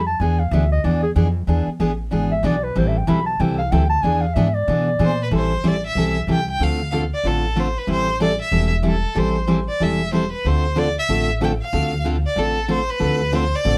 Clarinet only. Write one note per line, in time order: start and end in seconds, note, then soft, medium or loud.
0.07 0.22 A5 medium
0.21 0.41 G#5 medium
0.40 0.54 F5 medium
0.53 0.71 E5 medium
0.72 0.86 D#5 medium
0.85 1.02 D5 medium
1.03 1.11 G#4 loud
2.32 2.47 E5 medium
2.46 2.65 D5 medium
2.64 2.79 B4 medium
2.78 2.89 C5 medium
2.88 2.99 E5 medium
2.98 3.10 G5 medium
3.08 3.26 B5 medium
3.26 3.42 A5 medium
3.41 3.58 G5 medium
3.58 3.73 F5 loud
3.72 3.89 G5 medium
3.90 4.04 A5 loud
4.03 4.23 G#5 loud
4.21 4.36 F5 medium
4.35 4.56 E5 medium
4.55 5.25 D5 loud